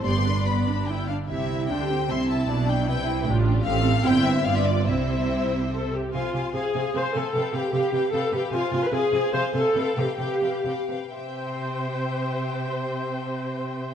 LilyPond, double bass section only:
\new Staff \with { instrumentName = "Double bass section" } { \clef bass \time 3/4 \key c \major \tempo 4 = 146 g,,2~ g,,8 r8 | c,4 d,4 c,4 | b,,4 c,4 a,,4 | a,,4 g,,4 g,,4 |
c,2~ c,8 r8 | r2. | r2. | r2. |
r2. | r2. | r2. | }